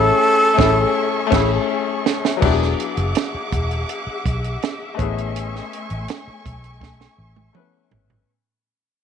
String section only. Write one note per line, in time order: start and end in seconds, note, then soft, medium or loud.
0.00 2.39 A4 medium
0.00 2.39 E5 medium
0.00 2.39 G#5 medium
0.00 2.39 C#6 medium
2.42 4.96 G#4 medium
2.42 8.25 E5 medium
2.42 4.96 F#5 medium
2.42 4.97 D6 medium
5.00 8.26 A3 medium
5.00 8.26 G#5 medium
5.00 8.26 C#6 medium